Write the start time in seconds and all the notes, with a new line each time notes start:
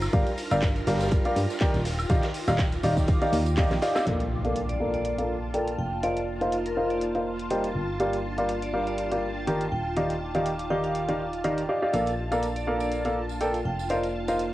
Already playing: D4 F4 A#4 C5 A#5 A#6
0.02 snare, tambourine, high woodblock, shaker
0.13 G1 G3 G4 A#4 D5 F5, kick, closed hi-hat, tambourine, shaker
0.26 F5, closed hi-hat, tambourine
0.36 G5, closed hi-hat, open hi-hat, shaker
0.51 G1 G3 G4 A#4 D5 F5, closed hi-hat, tambourine, high woodblock, shaker
0.62 kick, snare, clap, closed hi-hat, tambourine, shaker
0.76 closed hi-hat, tambourine
0.87 G1 G3 G4 A#4 D5 F5, snare, closed hi-hat, open hi-hat, shaker
0.94 snare, closed hi-hat
1.00 snare, closed hi-hat, tambourine, shaker
1.05 snare, closed hi-hat
1.11 kick, closed hi-hat, tambourine, shaker
1.25 G3 G4 A#4 D5 F5, closed hi-hat, tambourine
1.36 G2, closed hi-hat, open hi-hat, shaker
1.50 snare, tambourine, shaker
1.60 D#3 G4 A#4 D5 G5, kick, snare, clap, closed hi-hat, tambourine, shaker
1.74 D#1, snare, closed hi-hat, tambourine
1.85 D#4, snare, closed hi-hat, open hi-hat, shaker
1.95 D6, tambourine, high woodblock, shaker
2.10 D#1 D#3 G4 D5 D#5 F5, kick, snare, closed hi-hat, tambourine, shaker
2.23 snare, clap, closed hi-hat, tambourine
2.34 open hi-hat, shaker
2.48 D#1 D#3 G4 D5 D#5 F5, snare, closed hi-hat, tambourine, high woodblock, shaker
2.59 kick, snare, clap, closed hi-hat, tambourine, shaker
2.72 closed hi-hat, tambourine
2.83 D#1 D#3 G4 D5 D#5 F5, closed hi-hat, open hi-hat, shaker
2.97 kick, snare, closed hi-hat, tambourine, shaker
3.07 kick, closed hi-hat, tambourine, shaker
3.22 D#3 G4 D5 D#5 F5, closed hi-hat, tambourine
3.33 D#2, open hi-hat, shaker
3.46 closed hi-hat, tambourine, shaker
3.57 D#3 G4 D5 D#5 F5, kick, snare, clap, closed hi-hat, tambourine, shaker
3.71 A#1, snare, closed hi-hat, tambourine
3.82 G4 D5 D#5 F5, snare, closed hi-hat, open hi-hat, shaker
3.95 G4 D5 D#5 F5, snare, tambourine, high woodblock, shaker
4.06 A#1 A#3 D4 F4 A#4 D5 F5 A5, closed hi-hat, impact
4.19 A#3, closed hi-hat
4.44 A#3 A4 A#4 D5 F5, closed hi-hat
4.56 closed hi-hat
4.69 D5, closed hi-hat
4.80 A#3 A4 A#4 D5 F5
4.85 A5
4.94 D5, closed hi-hat
5.05 closed hi-hat
5.18 A#3 A4 A#4 D5 F5, closed hi-hat
5.54 A4 A#4 D5 G5, closed hi-hat
5.68 closed hi-hat
5.78 F1 D#4 G5
6.03 F4 A#4 C5 D5 D#5 F5, closed hi-hat
6.17 closed hi-hat
6.41 F4 A#4 C5 D#5 F5, closed hi-hat
6.52 closed hi-hat
6.66 A#4 C6, closed hi-hat
6.77 F4 A#4 C5 D#5 F5
6.90 D5, closed hi-hat
7.02 D5, closed hi-hat
7.15 F4 A#4 C5 D#5 F5, closed hi-hat
7.40 closed hi-hat
7.51 G3 A#4 C5 D#5 G5, closed hi-hat
7.64 closed hi-hat
7.75 G1 D4
8.00 G3 G4 A#4 D5 F5, closed hi-hat
8.13 closed hi-hat
8.38 G3 G4 A#4 D5 F5, closed hi-hat
8.49 closed hi-hat
8.63 D5 G5, closed hi-hat
8.74 G3 G4 A#4 D5 F5
8.87 D5, closed hi-hat
8.98 closed hi-hat
9.12 G3 G4 A#4 D5 F5, closed hi-hat
9.47 D#3 G4 A#4 D5 G5, closed hi-hat
9.61 closed hi-hat
9.72 D#1 D#4 G5
9.84 D6
9.97 D#3 G4 D5 D#5 F5, closed hi-hat
10.10 closed hi-hat
10.35 D#3 G4 D5 D#5 F5, closed hi-hat
10.46 closed hi-hat
10.59 closed hi-hat
10.70 D#3 G4 D5 D#5 F5 G5
10.84 F5, closed hi-hat
10.95 closed hi-hat
11.08 D#3 G4 D5 D#5 F5, closed hi-hat
11.33 closed hi-hat
11.44 D#3 G4 D5 D#5 F5, closed hi-hat
11.58 closed hi-hat
11.69 G4 D5 D#5 F5
11.82 G4 D5 D#5 F5
11.93 A#1 A#3 D4 F4 A4 A#4 D5 F5 A5, closed hi-hat, tambourine
12.06 closed hi-hat, tambourine
12.12 A#3
12.25 A5
12.31 A#3 A4 A#4 D5 F5, closed hi-hat, tambourine
12.43 closed hi-hat, tambourine
12.56 D5, closed hi-hat, tambourine
12.67 A#3 A4 A#4 D5 F5
12.80 D5, closed hi-hat, tambourine
12.92 closed hi-hat, tambourine
13.05 A#3 A4 A#4 D5 F5, closed hi-hat, tambourine
13.29 tambourine
13.41 A4 A#4 D5 G5, closed hi-hat, tambourine
13.55 closed hi-hat, tambourine
13.66 F1 D#4 G5
13.80 tambourine
13.89 F4 A#4 C5 D5 D#5 F5, closed hi-hat, tambourine
14.04 closed hi-hat, tambourine
14.28 F4 A#4 C5 D#5 F5, closed hi-hat, tambourine
14.32 C6
14.39 closed hi-hat, tambourine